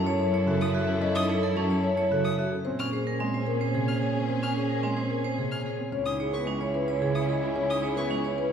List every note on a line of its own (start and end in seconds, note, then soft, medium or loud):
0.00 2.50 F#2 medium
0.00 0.10 F#3 medium
0.00 0.10 C#4 loud
0.00 2.48 E4 medium
0.00 2.48 A4 medium
0.00 0.10 A5 medium
0.06 0.24 C#4 medium
0.06 0.24 C#5 medium
0.20 0.37 C#5 medium
0.33 0.51 C#4 medium
0.33 0.51 C#5 medium
0.46 0.64 C#3 medium
0.46 0.65 F#4 medium
0.46 0.65 A4 medium
0.61 0.79 C#5 medium
0.61 0.71 D#6 medium
0.74 0.92 F#4 medium
0.74 0.92 E5 medium
0.88 0.99 C#4 medium
1.01 1.19 C#4 medium
1.01 1.19 D#5 medium
1.15 1.33 D#4 medium
1.15 1.25 D#6 medium
1.29 1.47 A4 medium
1.29 1.47 C#5 medium
1.43 1.60 A4 medium
1.56 1.74 F#3 medium
1.56 1.74 C#4 medium
1.56 1.74 A5 medium
1.70 1.87 C#4 medium
1.70 1.88 C#5 medium
1.84 2.01 C#5 medium
1.97 2.15 C#4 medium
1.97 2.15 C#5 medium
2.10 2.28 C#3 medium
2.10 2.29 F#4 medium
2.10 2.29 A4 medium
2.25 2.42 C#5 medium
2.25 2.35 D#6 medium
2.38 2.56 F#4 medium
2.38 2.56 E5 medium
2.52 2.69 C#4 medium
2.65 5.78 A#2 medium
2.65 2.83 C4 medium
2.65 5.75 C#4 medium
2.65 5.76 G#4 medium
2.65 2.83 C5 medium
2.79 2.97 C#4 medium
2.79 2.89 F6 medium
2.92 3.10 G#4 medium
2.92 3.10 C5 medium
3.07 3.24 A#4 medium
3.19 3.38 G#3 medium
3.19 3.38 C4 medium
3.19 3.37 G#5 medium
3.34 3.51 C4 medium
3.34 3.51 C5 medium
3.46 3.65 A#4 medium
3.61 3.79 C4 medium
3.61 3.78 C5 medium
3.74 3.92 C3 medium
3.74 3.92 G#4 medium
3.88 4.06 C5 medium
3.88 3.98 F6 medium
4.01 4.19 G#4 medium
4.01 4.19 C#5 medium
4.16 4.27 C4 medium
4.29 4.46 C4 medium
4.29 4.46 C5 medium
4.43 4.60 C#4 medium
4.43 4.53 F6 medium
4.56 4.74 G#4 medium
4.56 4.74 C5 medium
4.70 4.87 A#4 medium
4.83 5.01 G#3 medium
4.83 5.01 C4 medium
4.83 5.01 G#5 medium
4.97 5.15 C4 medium
4.97 5.15 C5 medium
5.10 5.28 A#4 medium
5.24 5.42 C4 medium
5.24 5.42 C5 medium
5.38 5.56 C3 medium
5.38 5.56 G#4 soft
5.38 5.56 G#4 medium
5.52 5.69 C5 medium
5.52 5.62 F6 medium
5.65 5.83 G#4 medium
5.65 5.83 C#5 soft
5.79 5.97 C4 medium
5.92 8.52 C#2 medium
5.92 6.10 C#4 medium
5.92 8.52 C#4 medium
5.92 8.52 E4 medium
5.92 6.10 C#5 medium
6.06 6.24 D#4 medium
6.06 6.16 D#6 medium
6.20 6.38 G#4 medium
6.20 6.38 C#5 medium
6.33 6.51 B3 medium
6.33 6.51 B4 medium
6.33 6.44 C#6 medium
6.47 6.65 G#3 medium
6.47 6.65 C#4 medium
6.47 6.65 G#5 medium
6.60 6.78 C#4 medium
6.60 6.78 C#5 medium
6.74 6.92 B4 medium
6.88 7.05 C#4 medium
6.88 7.06 C#5 medium
7.01 7.19 C#3 medium
7.01 7.19 G#4 medium
7.15 7.33 C#5 medium
7.15 7.25 D#6 medium
7.29 7.47 G#4 medium
7.29 7.47 D#5 medium
7.42 7.54 C#4 medium
7.56 7.74 C#4 medium
7.56 7.74 C#5 medium
7.70 7.88 D#4 medium
7.70 7.80 D#6 medium
7.83 8.01 G#4 medium
7.83 8.01 C#5 medium
7.96 8.14 B3 medium
7.96 8.15 B4 medium
7.96 8.07 C#6 medium
8.10 8.28 G#3 medium
8.10 8.28 C#4 medium
8.10 8.28 G#5 medium
8.24 8.42 C#4 medium
8.24 8.42 C#5 medium
8.38 8.52 B4 medium